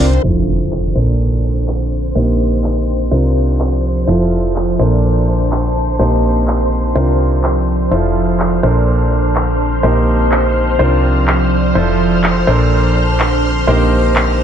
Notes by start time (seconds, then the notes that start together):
Already playing: C5
0.00 C2
0.13 closed hi-hat
0.23 F1 F3 E4 F4 A4 C5 C6, impact
0.57 A5
0.72 clap
0.95 A#1 A#2 D4 A4 A#4 C5
1.08 C5
1.68 clap
2.15 A#1 A#3 D#4 G4 A#4 C5
2.64 clap
3.11 C2 C3 F3 D4 F4 A#4 C5
3.60 clap
4.07 F1 F3 E4 F4 A4 C5
4.41 A5
4.56 clap
4.79 A#1 A#2 D4 A4 A#4 C5
4.98 C5
5.52 clap
5.99 A#1 A#3 D#4 G4 A#4 C5
6.48 clap
6.95 C2 C3 F3 D4 F4 A#4 C5
7.44 clap
7.91 F1 F3 E4 F4 A4 C5 F6
8.25 A5
8.40 clap
8.63 A#1 A#2 D4 A4 A#4 C5
8.78 C5
9.36 clap
9.83 A#1 A#3 D#4 G4 A#4 C5
10.32 clap
10.79 C2 C3 F3 D4 F4 A#4 C5
11.28 clap
11.75 F1 F3 E4 F4 A4 C5
12.09 A5
12.24 clap
12.47 A#1 A#2 D4 A4 A#4 C5
12.87 C5
13.20 clap
13.67 A#1 A#3 D#4 G4 A#4 C5
14.16 clap